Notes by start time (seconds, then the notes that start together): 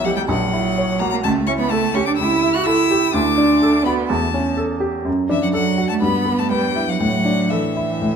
Already playing: B1 E4 C#5
0.03 F#3 G4 F#5
0.15 G3 G5
0.27 A#1 F#3 F#5
0.53 E4
0.78 C#5
1.00 A#3 F#4 A#5
1.10 A#3 A#5
1.24 C#2 A3 A5
1.47 C#4 E4 C#6
1.59 B3 B5
1.70 A3 A4 A5
1.94 C#4 G4 C#6
2.06 D4 D6
2.17 C#2 E4 E6
2.43 E4
2.54 F#4 F#6
2.66 E4 A4 E6
2.91 G4
3.14 D2 D4 D6
3.38 D4
3.62 A4
3.85 B3 F#4 B5
4.09 E2 A3 A5
4.34 C#4
4.57 A4
4.80 G4
5.05 F#2
5.29 E3 D4 E5
5.43 F#3 F#5
5.53 F#3 A4 F#5
5.78 F#4
5.89 A3 A5
6.01 G2 B3 B5
6.25 B3
6.39 A3 A5
6.51 G3 B4 G5
6.76 E4
6.89 F#3 F#5
7.00 A2 F#3 F#5
7.25 D4
7.51 E3 A4 E5
7.76 E4
8.02 A2